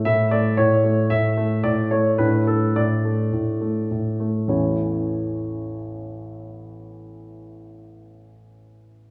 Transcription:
<<
  \new Staff \with { instrumentName = "Grand piano" } { \time 4/4 \key a \major \tempo 4 = 103 e''8 d''8 cis''4 e''4 d''8 cis''8 | b'8 a'8 d''2~ d''8 r8 | <a,, e, e a cis' e' cis''>1~ | <a,, e, e a cis' e' cis''>1 | }
  \new Staff \with { instrumentName = "Grand piano" } { \time 4/4 \key a \major << { <a e'>1 | <a d'>1 | r1 | r1 | } \\ { a,8 a8 a,8 a8 a,8 a8 a,8 a8 | a,8 a8 a,8 a8 a,8 a8 a,8 a8 | r1 | r1 | } >> }
>>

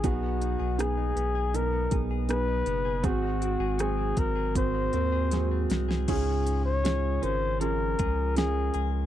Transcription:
<<
  \new Staff \with { instrumentName = "Flugelhorn" } { \time 4/4 \key des \major \tempo 4 = 80 ges'4 aes'4 bes'8. r16 ces''4 | ges'4 aes'8 bes'8 c''4. r8 | aes'8. des''8. c''8 bes'4 aes'8. r16 | }
  \new Staff \with { instrumentName = "Grand piano" } { \time 4/4 \key des \major <ces' ees' aes'>4 <ces' ees' aes'>4 <ces' ees' bes'>8 <ces' ees' aes'>8 <ces' ees' aes'>4 | <c' ges' aes'>4 <c' ges' aes'>4 <c' ges' bes'>8 <c' ges' bes'>8 <c' ges' aes'>4 | <des' f' aes'>4 <des' f' aes'>8 <des' f' bes'>8 <des' f' aes'>4 <des' f' bes'>4 | }
  \new Staff \with { instrumentName = "Grand piano" } { \clef bass \time 4/4 \key des \major r1 | r1 | aes,4. r2 r8 | }
  \new Staff \with { instrumentName = "Clean electric guitar" } { \time 4/4 \key des \major ces16 ces'16 ees'16 aes'16 ges16 ees'16 ces'16 aes'16 ces16 ces'16 ees'16 aes'16 ges16 ees'16 ces'16 aes'16 | aes,16 aes16 c'16 aes'16 ges16 c'16 aes16 aes'16 aes,16 aes16 c'16 aes'16 ges16 c'16 aes16 aes'16 | des8 des'8 aes'8 des'8 f8 aes'8 aes8 aes'8 | }
  \new Staff \with { instrumentName = "Sub bass" } { \clef bass \time 4/4 \key des \major ces,8. ces,8. ces,4 ces,4 ges,,8 | aes,,8. aes,,8. aes,,4 ees,4 c,8 | des,4. aes,,4 des,4 des,8 | }
  \new DrumStaff \with { instrumentName = "Drums" } \drummode { \time 4/4 <hh bd>8 hh8 <hh ss>8 hh8 hh8 <hh bd>8 <hh ss>8 hh8 | <hh bd>16 ss16 hh8 <hh ss>8 <hh bd>8 <hh bd>8 hh8 <hh sn>8 <hh sn>16 sn16 | <cymc hh bd>8 hh8 <hh sn>8 hh8 hh8 <hh bd>8 <hh sn>8 hh8 | }
>>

